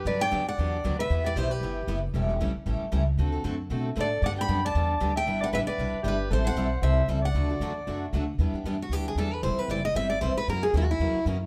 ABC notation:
X:1
M:4/4
L:1/8
Q:"Swing" 1/4=230
K:G
V:1 name="Steel-string acoustic guitar"
d g2 f4 e- | e d c B4 z | z8 | z6 d2 |
f b2 a4 g- | g f e d3 B2 | c f3 e2 z f- | f6 z2 |
[K:Em] z3 F G ^G A B | c B d ^d e =d c B | ^A ^G F E3 z2 |]
V:2 name="Soprano saxophone"
B d2 d4 B- | B B G G4 z | z8 | z6 A2 |
d g2 d4 e- | e d B B3 G2 | A c3 c2 z d- | d6 z2 |
[K:Em] z8 | z8 | z8 |]
V:3 name="Steel-string acoustic guitar"
[D,F,B,DG] z [D,F,B,DG] z [D,F,B,DG] z [D,F,B,DG] z | [E,B,EGB] z [E,B,EGB] z [E,B,EGB] z [E,B,EGB] z | [E,G,^CEA] z [E,G,CEA] z [E,G,CEA] z [E,G,CEA] z | [D,A,CFA] z [D,A,CFA] z [D,A,CFA] z [D,A,CFA] z |
[D,G,B,DG] z [D,G,B,DG] z [D,G,B,DG] z [D,G,B,DG] z | [G,DEB] z [G,DEB] z [G,DEB] z [G,DEB] z | [E,G,CEA] z [E,G,CEA] z [E,G,CEA] z [E,G,CEA] z | [D,A,DFA] z [D,A,DFA] z [D,A,DFA] z [D,A,DFA] z |
[K:Em] [E,G,DEB] z [E,G,DEB] z [E,G,DEB] z [E,G,DEB] z | [E,G,CEB] z [E,G,CEB] z [E,G,CEB] z [E,G,CEB] z | [F,^CE^A] z [F,CEA] z [F,CEA] z [F,CEA] z |]
V:4 name="Steel-string acoustic guitar"
[D,F,B,DG] [B,DG] [D,F,B,DG] z [D,F,B,DG] z [D,F,B,DG] z | [E,B,EG] [B,EG] [E,B,EG] z [E,B,EG] z [E,B,EG] z | [E,A,^CG] [A,CG] [E,A,CG] z [E,A,CG] z [E,A,CG] z | [D,A,CFA] [CFA] [D,A,CFA] z [D,A,CFA] z [D,A,CFA] z |
[D,G,B,DG] [B,DG] [D,G,B,DG] z [D,G,B,DG] z [D,G,B,DG] z | [G,DEB] [DEB] [G,DEB] z [G,DEB] z [G,DEB] z | [E,G,CEA] [CEA] [E,G,CEA] z [E,G,CEA] z [E,G,CEA] z | [D,F,A,DF] [A,DF] [D,F,A,DF] z [D,F,A,DF] z [D,F,A,DF] z |
[K:Em] [E,B,DG] [B,DG] [E,B,DG] z [E,B,DG] z [E,B,DG] z | [E,G,CEB] [CEB] [E,G,CEB] z [E,G,CEB] z [E,G,CEB] z | [^C,E,^A,^CF] [A,CF] [C,E,A,CF] z [C,E,A,CF] z [C,E,A,CF] z |]
V:5 name="Upright bass" clef=bass
G,,2 F,,2 E,,2 D,,2 | E,,2 B,,,2 G,,,2 F,,,2 | E,,,2 B,,, z A,,, z ^C,,2 | D,,2 F,,2 B,,2 A,,2 |
G,,2 F,,2 E,,2 D,,2 | G,,,2 A,,, z B,,, z G,,,2 | A,,,2 B,,,2 C,,2 ^C,,2 | D,,2 E,,2 F,,2 D,,2 |
[K:Em] E,, z F,,2 D,,2 E,,2 | E,,, z F,,,2 G,,,2 B,,, z | F,,2 ^D,,2 E,, z F,,2 |]